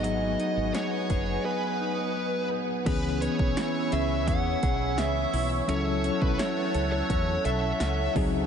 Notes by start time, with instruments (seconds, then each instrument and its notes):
Already playing: fretless electric bass G#1, tine electric piano F#3 B3 D#4 G#4, analog synth pad B4 F#5 G#5 D#6
0.04 clean electric guitar F#3, lead electric guitar D#5, closed hi-hat
0.39 clean electric guitar D#4, closed hi-hat
0.57 fretless electric bass G#1
0.74 clean electric guitar B3, lead electric guitar C#5, snare, closed hi-hat
1.10 fretless electric bass F#1, clean electric guitar G#4, kick, closed hi-hat
1.45 clean electric guitar B3, lead electric guitar B4
1.80 clean electric guitar D#4
2.16 clean electric guitar B3
2.51 clean electric guitar D#4
2.85 fretless electric bass C#2, tine electric piano E3 B3 C#4 G#4, clean electric guitar B3, lead electric guitar B4, analog synth pad C#5 G#5 B5 E6, kick, closed hi-hat, crash
3.22 clean electric guitar B3, lead electric guitar C#5, closed hi-hat
3.39 fretless electric bass B1, kick
3.57 clean electric guitar E4, lead electric guitar C#5, snare, closed hi-hat, tambourine
3.92 fretless electric bass C#2, clean electric guitar G#4, lead electric guitar E5, closed hi-hat
4.28 fretless electric bass E2, clean electric guitar B3, lead electric guitar F#5, kick, closed hi-hat
4.63 fretless electric bass B1, clean electric guitar G#4, kick, closed hi-hat
4.98 fretless electric bass C#2, clean electric guitar B3, lead electric guitar E5, snare, closed hi-hat, tambourine
5.33 fretless electric bass B1, clean electric guitar E4, open hi-hat
5.67 fretless electric bass C#2, tine electric piano F#3 C#4 E4 A4, clean electric guitar C#4, lead electric guitar C#5, analog synth pad F#5 A5, closed hi-hat
6.04 clean electric guitar C#4, closed hi-hat
6.22 fretless electric bass B1, lead electric guitar B4, kick
6.39 clean electric guitar E4, lead electric guitar C#5, snare, closed hi-hat, tambourine
6.75 fretless electric bass C#2, clean electric guitar A4, closed hi-hat
6.92 lead electric guitar C#5
7.10 fretless electric bass E2, clean electric guitar C#4, kick, closed hi-hat
7.45 fretless electric bass B1, clean electric guitar A4, lead electric guitar E5, closed hi-hat
7.80 fretless electric bass C#2, clean electric guitar C#4, snare, closed hi-hat, tambourine
8.15 fretless electric bass C#2, tine electric piano F#3 C4 D#4 G#4, clean electric guitar F#3, analog synth pad C5 G#5 D#6, kick, open hi-hat